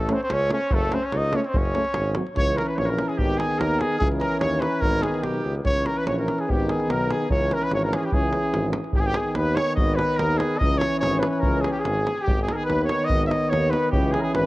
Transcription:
Already playing: A1 A3 A4
0.09 A3 C#4, davul high
0.13 C4 C5
0.23 C4 C5
0.30 C#2 C#4 C#5, davul high
0.50 A3 C#4 C#5, davul high
0.61 davul high
0.71 F#1 A3 A4, davul low
0.91 A3 C4 C#4 C5, davul high
1.03 C#4 C#5
1.12 C#2 D#4, davul high
1.17 D#5
1.33 A3 C#4 C#5, davul high
1.41 C#4 C#5, davul high
1.45 C4
1.49 C5
1.54 F#1 C#4, davul low
1.58 C#5
1.65 davul high
1.74 A3 C#4, davul high
1.85 davul high
1.94 G#1, davul high
2.04 davul high
2.15 F#3 C4, davul high
2.27 davul high
2.35 C#2 E3 C#4 C#5, davul low
2.48 davul high
2.56 A#4, davul high
2.65 B4, davul high
2.76 A#1 C#5, davul high
2.85 A#4
2.90 A#4
2.98 davul high
3.08 G#4, davul high
3.18 G#1 D#3 B3 G4, davul low
3.30 davul high
3.37 G#4, davul high
3.51 davul high
3.58 D#2 A#4, davul high
3.79 G#4, davul high
3.92 davul high
3.99 C#2 E3 C#4 G#4, davul low
4.12 davul high
4.20 A#4, davul high
4.32 davul high
4.40 D#2 C#5, davul high
4.60 B4, davul high
4.73 davul high
4.81 G#1 D#3 B3 A#4, davul low
4.93 davul high
5.02 G#4, davul high
5.14 davul high
5.23 B1 G4, davul high
5.34 davul high
5.44 C#2
5.55 davul high
5.64 C#2 E3 C#4 C#5, davul low
5.76 davul high
5.86 A#4, davul high
5.97 B4, davul high
6.06 A#1 C#5, davul high
6.19 A#4
6.28 davul high
6.38 G#4, davul high
6.47 G#1 D#3 B3 G4, davul low
6.60 davul high
6.69 G#4, davul high
6.80 davul high
6.89 B1 A#4, davul high
7.10 G#4, davul high
7.22 davul high
7.29 C#2 E3 C#4 C#5, davul low
7.42 davul high
7.51 A#4, davul high
7.62 B4, davul high
7.71 G#1 C#5, davul high
7.83 A#4
7.93 G#4, davul high
8.03 G4, davul high
8.12 C#2 E3 C#4 G#4, davul low
8.33 davul high
8.43 davul high
8.54 G#1, davul high
8.73 davul high
8.84 davul high
8.93 G#1 D#3 B3 G4, davul low
8.99 G#4
9.06 G4
9.14 G#4, davul high
9.34 D#2 B4, davul high
9.55 C#5, davul high
9.67 davul high
9.76 G#1 D#5, davul low
9.95 B4, davul high
10.16 D#2 A#4, davul high
10.37 G#4, davul high
10.51 davul high
10.57 C#2 E3 D#5, davul low
10.62 C#4
10.78 C#5, davul high
11.00 G#1 C#5, davul high
11.19 B4, davul high
11.29 B4, davul high
11.40 A#4, davul low
11.44 C#2
11.61 G#4, davul high
11.71 G4
11.76 G#4, davul high
11.81 G#1 G#4, davul high
12.07 davul high
12.18 G4, davul high
12.25 G#1 D#3 B3 G4, davul low
12.43 G#4
12.49 A#4, davul high
12.53 G#4 A#4
12.63 B4
12.69 D#2, davul high
12.85 C#5
12.89 davul high
13.00 davul high
13.05 D#5
13.10 G#1, davul low
13.26 D#5 E5
13.31 davul high
13.48 D#2 C#5
13.53 davul high
13.70 B4, davul high
13.84 davul high
13.90 C#2 E3 G4, davul low
13.95 C#4
14.11 G#4, davul high
14.19 G#4 A#4
14.24 G#4
14.33 G#1 B4, davul high

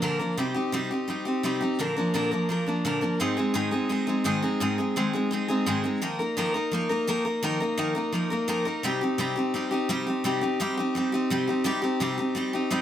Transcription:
0.02 A#2 D3 F3 A#3 D4 A#4
0.19 F3 A#3 D4 A#4
0.37 C3 G3 C4 D#4 G4
0.54 C4 D#4 G4
0.72 C3 G3 C4 D#4 G4
0.91 C4 D#4 G4
1.08 G3 C4 D#4 G4
1.25 C4 D#4 G4
1.43 C3 G3 C4 D#4 G4
1.61 C4 D#4 G4
1.79 A#2 D3 F3 A#3 D4 A#4
1.97 F3 A#3 D4 A#4
2.14 A#2 D3 F3 A#3 D4 A#4
2.31 F3 A#3 D4 A#4
2.49 F3 A#3 D4 A#4
2.66 F3 A#3 D4 A#4
2.85 A#2 D3 F3 A#3 D4 A#4
3.01 F3 A#3 D4 A#4
3.20 G#2 D#3 G#3 C4 D#4 G#4
3.37 G#3 C4 D#4 G#4
3.54 G#2 D#3 G#3 C4 D#4 G#4
3.71 G#3 C4 D#4 G#4
3.89 G#3 C4 D#4 G#4
4.07 G#3 C4 D#4 G#4
4.24 G#2 D#3 G#3 C4 D#4 G#4
4.42 G#3 C4 D#4 G#4
4.60 G#2 D#3 G#3 C4 D#4 G#4
4.78 G#3 C4 D#4 G#4
4.96 G#2 D#3 G#3 C4 D#4 G#4
5.13 G#3 C4 D#4 G#4
5.31 G#3 C4 D#4 G#4
5.48 G#3 C4 D#4 G#4
5.66 G#2 D#3 G#3 C4 D#4 G#4
5.84 G#3 C4 D#4 G#4
6.02 D#3 F3 A#3 D#4 A#4
6.19 A#3 D#4 A#4
6.37 D#3 F3 A#3 D#4 A#4
6.54 A#3 D#4 A#4
6.72 F3 A#3 D#4 A#4
6.89 A#3 D#4 A#4
7.07 D#3 F3 A#3 D#4 A#4
7.25 A#3 D#4 A#4
7.43 D#3 F3 A#3 D#4 A#4
7.60 A#3 D#4 A#4
7.78 D#3 F3 A#3 D#4 A#4
7.95 A#3 D#4 A#4
8.12 F3 A#3 D#4 A#4
8.30 A#3 D#4 A#4
8.48 D#3 F3 A#3 D#4 A#4
8.65 A#3 D#4 A#4
8.83 C3 G3 C4 D#4 G4
9.01 C4 D#4 G4
9.18 C3 G3 C4 D#4 G4
9.36 C4 D#4 G4
9.54 G3 C4 D#4 G4
9.71 C4 D#4 G4
9.89 C3 G3 C4 D#4 G4
10.07 C4 D#4 G4
10.24 C3 G3 C4 D#4 G4
10.41 C4 D#4 G4
10.60 C3 G3 C4 D#4 G4
10.77 C4 D#4 G4
10.95 G3 C4 D#4 G4
11.12 C4 D#4 G4
11.30 C3 G3 C4 D#4 G4
11.47 C4 D#4 G4
11.64 C3 G3 C4 D#4 G4
11.82 C4 D#4 G4
12.00 C3 G3 C4 D#4 G4
12.18 C4 D#4 G4
12.35 G3 C4 D#4 G4
12.53 C4 D#4 G4
12.70 C3 G3 C4 D#4 G4

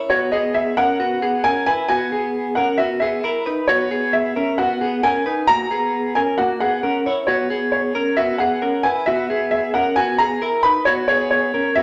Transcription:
Already playing: E4
0.10 B3 F#4 C#5
0.32 B3 G#4 D#5
0.54 E5
0.77 C#4 A#4 F#5
1.00 B3 F#4
1.22 B3 G#4
1.44 C#4 A#4 G#5
1.66 E4 B4 G#5
1.88 B3 F#4 G#5
2.12 B3 G#4
2.55 C#4 A#4 F#5
2.78 B3 F#4 E5
3.00 B3 G#4 E5
3.24 E4 A#4
3.46 D#4 B4
3.68 B3 F#4 C#5
3.91 B3 G#4
4.13 E5
4.36 C#4 A#4
4.58 B3 F#4 F#5
4.81 B3 G#4
5.03 C#4 A#4 G#5
5.26 D#4 B4
5.47 A#3 F#4 A#5
5.71 B3 G#4
6.15 C#4 A#4 G#5
6.38 A#3 F#4 F#5
6.60 B3 G#4 F#5
6.83 C#4 A#4
7.06 E4 C#5
7.27 B3 F#4 C#5
7.50 B3 G#4
7.72 C#5
7.95 C#4 A#4
8.17 B3 F#4 E5
8.38 B3 G#4 F#5
8.62 C#4 A#4
8.83 E4 B4 G#5
9.06 B3 F#4 E5
9.30 B3 G#4
9.51 E5
9.74 C#4 A#4 F#5
9.96 B3 F#4 G#5
10.18 B3 G#4 A#5
10.42 E4 A#4
10.63 D#4 B4 B5
10.85 B3 F#4 C#5
11.08 B3 G#4 C#5
11.31 C#5
11.54 C#4 A#4
11.75 B3 F#4 E5

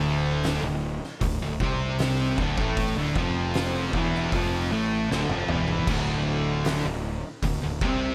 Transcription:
Already playing: D1 D2 D3
0.43 snare, open hi-hat
0.63 D1 D2
1.04 snare
1.21 D1 D2, kick, open hi-hat
1.41 D1 D2
1.60 C2 C3 C4, kick
1.99 snare, open hi-hat
2.38 D1 D2 D3, kick
2.58 A1 A2 A3, kick
2.77 kick, open hi-hat
2.96 D1 D2 D3
3.15 F1 F2 F3, kick
3.54 snare, open hi-hat
3.93 E1 E2 E3, kick
4.15 snare
4.32 F1 F2 F3, kick, open hi-hat
4.71 A1 A2 A3
5.10 D1 D2 D3, snare
5.29 F1 F2 F3, high tom
5.48 E1 E2 E3, mid tom
5.68 floor tom
5.87 D1 D2 D3, kick, crash
6.65 snare, open hi-hat
6.85 D1 D2
7.42 D1 D2, kick, open hi-hat
7.62 D1 D2
7.81 C2 C3 C4, kick

